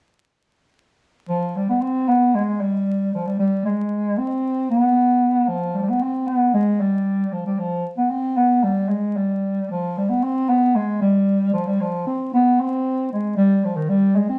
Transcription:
0, 0, Header, 1, 2, 480
1, 0, Start_track
1, 0, Tempo, 524934
1, 695, Time_signature, 2, 2, 24, 8
1, 13157, End_track
2, 0, Start_track
2, 0, Title_t, "Bass clarinet"
2, 0, Program_c, 0, 71
2, 1180, Note_on_c, 0, 53, 86
2, 1429, Note_on_c, 0, 55, 73
2, 1443, Note_off_c, 0, 53, 0
2, 1542, Note_off_c, 0, 55, 0
2, 1546, Note_on_c, 0, 59, 78
2, 1663, Note_on_c, 0, 60, 98
2, 1677, Note_off_c, 0, 59, 0
2, 1904, Note_on_c, 0, 59, 87
2, 1918, Note_off_c, 0, 60, 0
2, 2145, Note_on_c, 0, 56, 84
2, 2158, Note_off_c, 0, 59, 0
2, 2385, Note_on_c, 0, 55, 70
2, 2399, Note_off_c, 0, 56, 0
2, 2860, Note_off_c, 0, 55, 0
2, 2876, Note_on_c, 0, 53, 72
2, 2987, Note_on_c, 0, 55, 66
2, 3001, Note_off_c, 0, 53, 0
2, 3096, Note_off_c, 0, 55, 0
2, 3102, Note_on_c, 0, 55, 78
2, 3322, Note_off_c, 0, 55, 0
2, 3341, Note_on_c, 0, 56, 77
2, 3822, Note_on_c, 0, 60, 100
2, 3835, Note_off_c, 0, 56, 0
2, 4295, Note_off_c, 0, 60, 0
2, 4301, Note_on_c, 0, 59, 93
2, 5013, Note_on_c, 0, 53, 79
2, 5026, Note_off_c, 0, 59, 0
2, 5245, Note_on_c, 0, 55, 72
2, 5259, Note_off_c, 0, 53, 0
2, 5276, Note_on_c, 0, 53, 54
2, 5290, Note_off_c, 0, 55, 0
2, 5323, Note_on_c, 0, 55, 61
2, 5337, Note_off_c, 0, 53, 0
2, 5387, Note_on_c, 0, 59, 83
2, 5401, Note_off_c, 0, 55, 0
2, 5506, Note_on_c, 0, 60, 85
2, 5520, Note_off_c, 0, 59, 0
2, 5737, Note_on_c, 0, 59, 82
2, 5751, Note_off_c, 0, 60, 0
2, 5972, Note_off_c, 0, 59, 0
2, 5978, Note_on_c, 0, 56, 83
2, 6221, Note_on_c, 0, 55, 70
2, 6235, Note_off_c, 0, 56, 0
2, 6699, Note_on_c, 0, 53, 71
2, 6713, Note_off_c, 0, 55, 0
2, 6817, Note_off_c, 0, 53, 0
2, 6825, Note_on_c, 0, 55, 69
2, 6938, Note_on_c, 0, 53, 82
2, 6951, Note_off_c, 0, 55, 0
2, 7176, Note_off_c, 0, 53, 0
2, 7294, Note_on_c, 0, 59, 78
2, 7410, Note_on_c, 0, 60, 95
2, 7424, Note_off_c, 0, 59, 0
2, 7655, Note_on_c, 0, 59, 84
2, 7668, Note_off_c, 0, 60, 0
2, 7893, Note_on_c, 0, 55, 80
2, 7906, Note_off_c, 0, 59, 0
2, 8127, Note_on_c, 0, 56, 69
2, 8141, Note_off_c, 0, 55, 0
2, 8379, Note_on_c, 0, 55, 72
2, 8393, Note_off_c, 0, 56, 0
2, 8857, Note_off_c, 0, 55, 0
2, 8878, Note_on_c, 0, 53, 77
2, 9121, Note_on_c, 0, 55, 65
2, 9135, Note_off_c, 0, 53, 0
2, 9228, Note_on_c, 0, 59, 81
2, 9242, Note_off_c, 0, 55, 0
2, 9355, Note_on_c, 0, 60, 102
2, 9368, Note_off_c, 0, 59, 0
2, 9592, Note_on_c, 0, 59, 90
2, 9606, Note_off_c, 0, 60, 0
2, 9830, Note_on_c, 0, 56, 87
2, 9843, Note_off_c, 0, 59, 0
2, 10062, Note_off_c, 0, 56, 0
2, 10074, Note_on_c, 0, 55, 81
2, 10511, Note_off_c, 0, 55, 0
2, 10546, Note_on_c, 0, 53, 74
2, 10666, Note_on_c, 0, 55, 73
2, 10679, Note_off_c, 0, 53, 0
2, 10796, Note_on_c, 0, 53, 77
2, 10810, Note_off_c, 0, 55, 0
2, 11026, Note_off_c, 0, 53, 0
2, 11036, Note_on_c, 0, 60, 74
2, 11249, Note_off_c, 0, 60, 0
2, 11280, Note_on_c, 0, 59, 89
2, 11523, Note_on_c, 0, 60, 92
2, 11537, Note_off_c, 0, 59, 0
2, 11990, Note_off_c, 0, 60, 0
2, 11998, Note_on_c, 0, 56, 71
2, 12211, Note_off_c, 0, 56, 0
2, 12227, Note_on_c, 0, 55, 96
2, 12477, Note_on_c, 0, 53, 80
2, 12490, Note_off_c, 0, 55, 0
2, 12583, Note_on_c, 0, 51, 76
2, 12597, Note_off_c, 0, 53, 0
2, 12700, Note_on_c, 0, 55, 87
2, 12714, Note_off_c, 0, 51, 0
2, 12942, Note_on_c, 0, 56, 79
2, 12956, Note_off_c, 0, 55, 0
2, 13060, Note_off_c, 0, 56, 0
2, 13067, Note_on_c, 0, 60, 80
2, 13157, Note_off_c, 0, 60, 0
2, 13157, End_track
0, 0, End_of_file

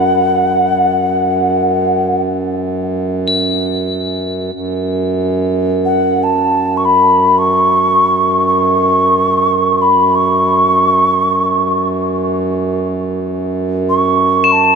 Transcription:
0, 0, Header, 1, 4, 480
1, 0, Start_track
1, 0, Key_signature, 3, "minor"
1, 0, Tempo, 500000
1, 14163, End_track
2, 0, Start_track
2, 0, Title_t, "Crotales"
2, 0, Program_c, 0, 9
2, 3144, Note_on_c, 0, 107, 45
2, 4845, Note_off_c, 0, 107, 0
2, 13862, Note_on_c, 0, 100, 56
2, 14163, Note_off_c, 0, 100, 0
2, 14163, End_track
3, 0, Start_track
3, 0, Title_t, "Ocarina"
3, 0, Program_c, 1, 79
3, 0, Note_on_c, 1, 78, 74
3, 2130, Note_off_c, 1, 78, 0
3, 5618, Note_on_c, 1, 78, 62
3, 5984, Note_on_c, 1, 81, 71
3, 5998, Note_off_c, 1, 78, 0
3, 6501, Note_on_c, 1, 85, 54
3, 6515, Note_off_c, 1, 81, 0
3, 6575, Note_on_c, 1, 83, 74
3, 6589, Note_off_c, 1, 85, 0
3, 7085, Note_on_c, 1, 85, 93
3, 7099, Note_off_c, 1, 83, 0
3, 8128, Note_off_c, 1, 85, 0
3, 8133, Note_on_c, 1, 85, 81
3, 9422, Note_on_c, 1, 83, 68
3, 9436, Note_off_c, 1, 85, 0
3, 9744, Note_on_c, 1, 85, 80
3, 9759, Note_off_c, 1, 83, 0
3, 11410, Note_off_c, 1, 85, 0
3, 13338, Note_on_c, 1, 85, 83
3, 13937, Note_on_c, 1, 81, 93
3, 13952, Note_off_c, 1, 85, 0
3, 14163, Note_off_c, 1, 81, 0
3, 14163, End_track
4, 0, Start_track
4, 0, Title_t, "Harmonium"
4, 0, Program_c, 2, 20
4, 0, Note_on_c, 2, 42, 55
4, 4327, Note_off_c, 2, 42, 0
4, 4341, Note_on_c, 2, 42, 57
4, 14163, Note_off_c, 2, 42, 0
4, 14163, End_track
0, 0, End_of_file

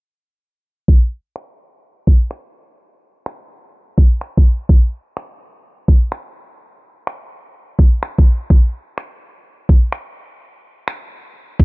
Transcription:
0, 0, Header, 1, 2, 480
1, 0, Start_track
1, 0, Tempo, 476190
1, 889, Time_signature, 4, 2, 24, 8
1, 11740, End_track
2, 0, Start_track
2, 0, Title_t, "Drums"
2, 889, Note_on_c, 9, 36, 106
2, 990, Note_off_c, 9, 36, 0
2, 1369, Note_on_c, 9, 26, 88
2, 1470, Note_off_c, 9, 26, 0
2, 2089, Note_on_c, 9, 36, 92
2, 2190, Note_off_c, 9, 36, 0
2, 2326, Note_on_c, 9, 26, 97
2, 2427, Note_off_c, 9, 26, 0
2, 3288, Note_on_c, 9, 26, 96
2, 3389, Note_off_c, 9, 26, 0
2, 4009, Note_on_c, 9, 36, 94
2, 4110, Note_off_c, 9, 36, 0
2, 4248, Note_on_c, 9, 26, 96
2, 4348, Note_off_c, 9, 26, 0
2, 4410, Note_on_c, 9, 36, 100
2, 4511, Note_off_c, 9, 36, 0
2, 4730, Note_on_c, 9, 36, 116
2, 4831, Note_off_c, 9, 36, 0
2, 5209, Note_on_c, 9, 26, 98
2, 5310, Note_off_c, 9, 26, 0
2, 5929, Note_on_c, 9, 36, 92
2, 6030, Note_off_c, 9, 36, 0
2, 6168, Note_on_c, 9, 26, 95
2, 6269, Note_off_c, 9, 26, 0
2, 7129, Note_on_c, 9, 26, 100
2, 7229, Note_off_c, 9, 26, 0
2, 7850, Note_on_c, 9, 36, 94
2, 7951, Note_off_c, 9, 36, 0
2, 8091, Note_on_c, 9, 26, 104
2, 8192, Note_off_c, 9, 26, 0
2, 8250, Note_on_c, 9, 36, 106
2, 8351, Note_off_c, 9, 36, 0
2, 8570, Note_on_c, 9, 36, 108
2, 8671, Note_off_c, 9, 36, 0
2, 9049, Note_on_c, 9, 26, 99
2, 9149, Note_off_c, 9, 26, 0
2, 9769, Note_on_c, 9, 36, 94
2, 9869, Note_off_c, 9, 36, 0
2, 10004, Note_on_c, 9, 26, 91
2, 10105, Note_off_c, 9, 26, 0
2, 10964, Note_on_c, 9, 26, 89
2, 11065, Note_off_c, 9, 26, 0
2, 11688, Note_on_c, 9, 36, 93
2, 11740, Note_off_c, 9, 36, 0
2, 11740, End_track
0, 0, End_of_file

